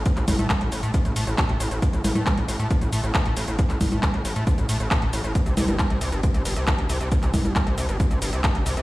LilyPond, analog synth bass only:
\new Staff \with { instrumentName = "Analog synth bass" } { \clef bass \time 4/4 \key c \mixolydian \tempo 4 = 136 r16 a,,16 a,,16 a,16 r16 a,,16 a,,16 a,16 r16 a,,16 a,16 a,,16 r16 a,16 a,,16 a,,16 | r16 a,,16 a,,16 a,16 r16 a,,16 a,,16 a,16 r16 a,,16 a,16 a,,16 r16 a,16 a,,16 a,,16 | r16 a,,16 a,,16 a,16 r16 a,,16 a,,16 a,16 r16 a,,16 a,16 a,,16 r16 a,16 a,,16 a,,16 | r16 c,16 c,16 g,,16 r16 c,16 c,16 g,,16 r16 c,16 g,,16 c,16 r16 g,,16 c,16 c,16 |
r16 c,16 c,16 g,,16 r16 c,16 c,16 g,,16 r16 c,16 g,,16 c,16 r16 g,,16 c,16 c,16 | }